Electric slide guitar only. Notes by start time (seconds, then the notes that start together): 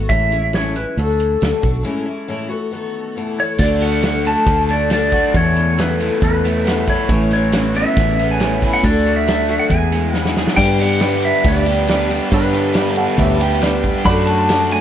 0.09 E5
0.55 C#5
0.76 B4
0.99 A4
3.40 C#5
3.59 D5
3.82 F#5
4.27 A5
4.71 D5
4.94 D5
5.37 C#5
5.80 B4
6.24 B4
6.90 C#5
7.33 C#5
7.76 E5
8.31 G#5
8.73 F#5
8.84 D5
9.16 E5
9.59 F#5
9.68 G#5
10.16 F#5
10.56 G5
10.81 F#5
11.25 E5
11.48 D5
12.34 B4
12.93 A4
14.05 B5
14.26 A5
14.72 G#5